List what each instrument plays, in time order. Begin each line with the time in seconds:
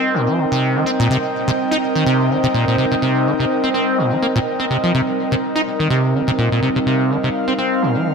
Already playing: ambient pad G3 C4 D#4 A#4, acid bass C4, analog synth pad C4 A#4 D#5 G5
0.14 acid bass A#2
0.28 acid bass F3
0.38 acid bass D3
0.52 acid bass C3
0.76 acid bass D#3
0.86 acid bass C4
1.00 acid bass A#2
1.10 acid bass C3, ambient pad C5
1.48 acid bass C3
1.71 acid bass D#4
1.95 acid bass D#3
2.06 acid bass C3
2.30 acid bass D3
2.44 acid bass C3
2.54 acid bass A#2
2.68 acid bass A#2
2.78 acid bass C3
2.92 acid bass C3
3.02 acid bass C3
3.26 acid bass D3
3.40 acid bass C3
3.64 acid bass C4
3.74 acid bass C4
3.98 acid bass A#2
4.12 acid bass F3
4.22 acid bass A#3
4.36 acid bass A#2
4.60 acid bass C4
4.70 acid bass C3
4.83 acid bass F3
4.94 acid bass C3, ambient pad A#4
5.32 acid bass C3
5.56 acid bass D#4
5.80 acid bass D#3
5.90 acid bass C3
6.14 acid bass D3
6.28 acid bass C3
6.38 acid bass A#2
6.52 acid bass A#2
6.62 acid bass C3
6.72 acid bass C3, analog synth pad F5
6.86 acid bass C3
7.10 acid bass D3
7.24 acid bass C3
7.48 acid bass C4
7.58 acid bass C4
7.82 acid bass A#2
7.96 acid bass F3
8.06 acid bass D3